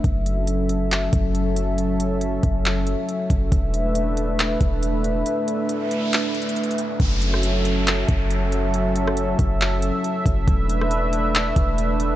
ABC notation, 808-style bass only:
X:1
M:4/4
L:1/16
Q:1/4=138
K:F#m
V:1 name="808-style bass" clef=bass
F,,,8- F,,,2 F,,,6- | F,,,6 F,,,4- F,,, z3 F,,,2 | E,,,8- E,,,2 E,,,6 | z16 |
F,,,8- F,,,2 F,,,6- | F,,,6 F,,,4- F,,, z3 F,,,2 | E,,,8- E,,,2 E,,,6 |]